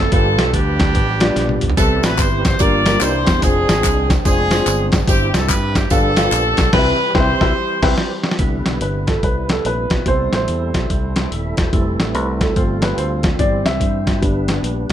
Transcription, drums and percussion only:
0.12 kick, closed hi-hat
0.39 snare, closed hi-hat
0.53 kick, closed hi-hat
0.80 kick, snare, closed hi-hat
0.95 kick, closed hi-hat
1.20 snare, closed hi-hat
1.36 snare, closed hi-hat
1.49 high tom
1.61 closed hi-hat, mid tom
1.70 floor tom
1.77 kick, closed hi-hat, tambourine
2.03 snare, closed hi-hat, tambourine
2.18 kick, clap, closed hi-hat, tambourine
2.45 kick, snare, closed hi-hat, tambourine
2.59 kick, closed hi-hat, tambourine
2.86 snare, closed hi-hat, tambourine
3.01 clap, closed hi-hat, tambourine
3.27 kick, snare, closed hi-hat, tambourine
3.42 kick, closed hi-hat, tambourine
3.69 snare, closed hi-hat, tambourine
3.84 kick, clap, closed hi-hat, tambourine
4.10 kick, snare, closed hi-hat, tambourine
4.25 kick, closed hi-hat, tambourine
4.51 snare, closed hi-hat, tambourine
4.67 clap, closed hi-hat, tambourine
4.92 kick, snare, closed hi-hat, tambourine
5.08 kick, closed hi-hat, tambourine
5.34 snare, closed hi-hat, tambourine
5.49 kick, clap, closed hi-hat, tambourine
5.75 kick, snare, closed hi-hat, tambourine
5.90 kick, closed hi-hat, tambourine
6.17 snare, closed hi-hat, tambourine
6.32 clap, closed hi-hat, tambourine
6.57 kick, snare, closed hi-hat, tambourine
6.73 kick, snare, crash
7.15 kick, snare
7.41 kick, snare
7.83 kick, snare, crash
7.98 snare
8.24 snare
8.31 snare
8.39 kick, closed hi-hat
8.66 snare, closed hi-hat
8.81 closed hi-hat
9.07 kick, snare, closed hi-hat
9.23 kick, closed hi-hat
9.49 snare, closed hi-hat
9.65 closed hi-hat
9.90 kick, snare, closed hi-hat
10.06 kick, closed hi-hat
10.33 snare, closed hi-hat
10.48 closed hi-hat
10.74 kick, snare, closed hi-hat
10.90 kick, closed hi-hat
11.16 snare, closed hi-hat
11.32 closed hi-hat
11.57 kick, snare, closed hi-hat
11.73 kick, closed hi-hat
12.00 snare, closed hi-hat
12.15 closed hi-hat
12.41 kick, snare, closed hi-hat
12.56 kick, closed hi-hat
12.82 snare, closed hi-hat
12.98 closed hi-hat
13.23 kick, snare, closed hi-hat
13.39 kick, closed hi-hat
13.66 snare, closed hi-hat
13.80 kick, closed hi-hat
14.07 kick, snare, closed hi-hat
14.23 kick, closed hi-hat
14.48 snare, closed hi-hat
14.64 closed hi-hat
14.90 closed hi-hat

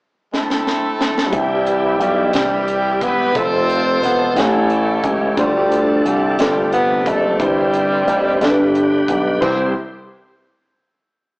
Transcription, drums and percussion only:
0.34 snare
0.50 snare
0.67 snare
1.01 snare
1.18 snare
1.33 kick, closed hi-hat
1.66 closed hi-hat
2.01 closed hi-hat
2.33 snare, closed hi-hat
2.68 closed hi-hat
3.01 kick, closed hi-hat
3.35 kick, closed hi-hat
3.70 closed hi-hat
4.03 snare, closed hi-hat
4.36 snare, closed hi-hat
4.70 closed hi-hat
5.04 kick, closed hi-hat
5.37 kick, closed hi-hat
5.72 closed hi-hat
6.06 closed hi-hat
6.39 snare, closed hi-hat
6.72 closed hi-hat
7.06 kick, closed hi-hat
7.40 kick, closed hi-hat
7.74 closed hi-hat
8.08 closed hi-hat
8.41 snare, closed hi-hat
8.75 closed hi-hat
9.08 kick, closed hi-hat
9.42 kick, crash

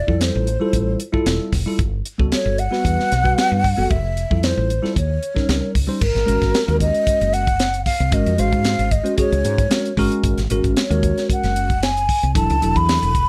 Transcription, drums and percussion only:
0.08 kick
0.21 snare, closed hi-hat
0.47 closed hi-hat
0.73 kick, closed hi-hat
1.00 closed hi-hat
1.14 kick
1.26 snare, closed hi-hat
1.52 kick, snare, open hi-hat
1.79 kick, closed hi-hat
2.05 closed hi-hat
2.19 kick
2.32 snare, closed hi-hat
2.58 closed hi-hat
2.73 snare
2.85 kick, closed hi-hat
3.00 snare
3.12 snare, closed hi-hat
3.25 kick
3.38 snare, closed hi-hat
3.64 kick, open hi-hat
3.90 kick, closed hi-hat
4.17 closed hi-hat
4.31 kick
4.43 snare, closed hi-hat
4.70 closed hi-hat
4.85 snare
4.96 kick, closed hi-hat
5.23 closed hi-hat
5.36 kick, snare
5.49 snare, closed hi-hat
5.75 kick, open hi-hat
6.01 kick, crash
6.16 snare, closed hi-hat
6.28 closed hi-hat
6.42 kick, snare, closed hi-hat
6.54 snare, closed hi-hat
6.68 closed hi-hat
6.80 kick, closed hi-hat
6.94 closed hi-hat
7.07 kick, closed hi-hat
7.21 closed hi-hat
7.34 closed hi-hat
7.47 kick, closed hi-hat
7.59 snare, closed hi-hat
7.74 closed hi-hat
7.86 kick, snare, open hi-hat
8.00 closed hi-hat
8.12 kick, closed hi-hat
8.26 closed hi-hat
8.38 closed hi-hat
8.52 kick, closed hi-hat
8.65 snare, closed hi-hat
8.79 closed hi-hat
8.91 kick, closed hi-hat
9.06 closed hi-hat
9.18 kick, closed hi-hat
9.33 closed hi-hat
9.45 closed hi-hat
9.58 kick, closed hi-hat
9.71 snare, closed hi-hat
9.85 closed hi-hat
9.97 kick, open hi-hat
10.12 closed hi-hat
10.23 kick, closed hi-hat
10.38 snare, closed hi-hat
10.50 closed hi-hat
10.64 kick, closed hi-hat
10.77 snare, closed hi-hat
10.91 closed hi-hat
11.03 kick, closed hi-hat
11.18 snare, closed hi-hat
11.30 kick, closed hi-hat
11.44 snare, closed hi-hat
11.56 closed hi-hat
11.70 kick, closed hi-hat
11.83 snare, closed hi-hat
11.97 closed hi-hat
12.09 kick, open hi-hat
12.23 closed hi-hat
12.35 kick, closed hi-hat
12.50 closed hi-hat
12.62 closed hi-hat
12.76 kick, closed hi-hat
12.89 snare, closed hi-hat
13.03 closed hi-hat
13.15 kick, closed hi-hat

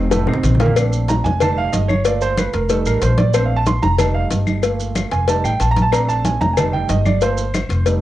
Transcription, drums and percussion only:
0.11 cowbell, high bongo, high conga, maracas
0.27 low bongo, claves
0.34 low conga
0.44 cowbell, low conga, maracas
0.55 low conga
0.60 cowbell, low bongo, maracas
0.66 low conga
0.76 cowbell, high conga, claves, maracas
0.93 high conga, maracas
1.08 cowbell, high conga, maracas
1.25 high conga, maracas
1.41 cowbell, high conga, low conga, claves, maracas
1.58 high conga
1.73 cowbell, high conga, maracas
1.89 high conga, claves, maracas
2.05 cowbell, maracas
2.21 high conga, maracas
2.38 cowbell, high conga, claves, maracas
2.54 cowbell, maracas
2.69 cowbell, high conga, maracas
2.86 high conga, claves, maracas
3.02 cowbell, high conga, maracas
3.18 cowbell, high conga, maracas
3.34 cowbell, claves, maracas
3.51 high conga
3.66 cowbell, high conga, maracas
3.83 high conga, maracas
3.98 cowbell, high conga, low conga, claves, maracas
4.15 high conga
4.30 cowbell, high conga, maracas
4.47 high conga, claves, maracas
4.63 cowbell, high conga, maracas
4.80 high conga, maracas
4.95 cowbell, high conga, claves, maracas
5.11 cowbell, maracas
5.28 cowbell, high conga, maracas
5.44 high conga, claves, maracas
5.60 cowbell, high conga, maracas
5.76 cowbell, high conga, maracas
5.92 cowbell, high conga, claves, maracas
6.08 high conga, maracas
6.25 cowbell, high conga, maracas
6.41 high conga, maracas
6.57 cowbell, high conga, low conga, claves, maracas
6.74 high conga, low conga
6.89 cowbell, high conga, maracas
7.05 high conga, claves, maracas
7.21 cowbell, high conga, maracas
7.37 high conga, maracas
7.54 cowbell, high conga, claves, maracas
7.70 cowbell, maracas
7.86 cowbell, high conga, maracas

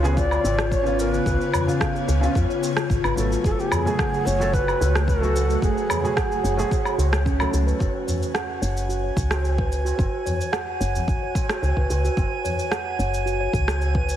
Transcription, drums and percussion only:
0.04 tabla na, shaker
0.17 kick, shaker
0.31 tabla na, low woodblock, shaker
0.45 tabla na, shaker
0.59 cross-stick, shaker
0.71 kick, shaker
0.86 tabla tin, shaker
0.99 shaker
1.14 shaker
1.26 kick, tabla tin, shaker
1.41 shaker
1.54 tabla tin, tabla ge, low woodblock, shaker
1.69 shaker
1.81 kick, cross-stick, shaker
1.96 shaker
2.09 shaker
2.23 tabla na, shaker
2.35 kick, shaker
2.51 shaker
2.63 tabla na, shaker
2.77 cross-stick, shaker
2.90 kick, shaker
3.04 low woodblock, shaker
3.18 shaker
3.32 shaker
3.44 kick, tabla tin, shaker
3.60 shaker
3.72 tabla tin, tabla ge, low woodblock, shaker
3.87 shaker
3.99 kick, cross-stick, shaker
4.14 shaker
4.27 shaker
4.40 tabla na, shaker
4.53 kick, shaker
4.68 tabla na, low woodblock, shaker
4.80 tabla na, shaker
4.95 cross-stick, shaker
5.08 kick, shaker
5.23 tabla tin, shaker
5.36 shaker
5.50 shaker
5.62 kick, tabla tin, shaker
5.78 shaker
5.90 tabla tin, tabla ge, low woodblock, shaker
6.05 tabla na, shaker
6.17 kick, cross-stick, shaker
6.32 shaker
6.45 tabla tin, shaker
6.59 tabla na, shaker
6.71 kick, shaker
6.85 low woodblock, shaker
6.99 tabla na, shaker
7.13 cross-stick, shaker
7.26 kick, shaker
7.40 low woodblock, shaker
7.54 shaker
7.68 shaker
7.79 kick, tabla na, tabla tin, shaker
8.07 tabla tin, tabla ge, shaker
8.23 shaker
8.35 cross-stick, shaker
8.63 shaker
8.77 shaker
8.90 shaker
9.17 kick, shaker
9.31 cross-stick, tabla na, shaker
9.45 shaker
9.58 kick, tabla tin
9.72 shaker
9.86 tabla na, shaker
9.99 kick, tabla na, tabla tin, shaker
10.26 tabla tin, tabla ge, shaker
10.41 shaker
10.53 cross-stick, shaker
10.81 shaker
10.95 tabla ge, shaker
11.08 kick, shaker
11.35 kick, tabla na, shaker
11.49 cross-stick, tabla na, shaker
11.63 shaker
11.77 kick
11.90 tabla na, shaker
12.05 shaker
12.17 kick, tabla na, tabla tin, shaker
12.45 tabla tin, tabla ge, shaker
12.59 shaker
12.72 cross-stick, shaker
13.00 shaker
13.14 shaker
13.27 shaker
13.53 kick, shaker
13.68 cross-stick, tabla na, shaker
13.81 shaker
13.95 kick, tabla tin
14.09 shaker

